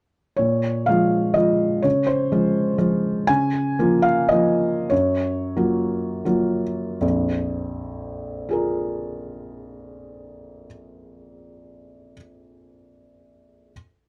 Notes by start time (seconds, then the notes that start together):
0.36 A#2 C#5
0.86 F3 G#3 F4 F5
1.34 F3 G#3 F4 D#5
1.82 C#3 C#5
2.07 C5
2.32 F3 G#3 F4
2.78 F3 G#3 F4
3.27 C#3 G#5
3.79 F3 A#3 F4
4.02 F5
4.29 F3 A#3 F4 D#5
4.90 F#2 C#5
5.56 F#3 A#3 F4
6.25 F#3 A#3 F4
7.01 A#1 F2
8.49 F4 G#4 A#4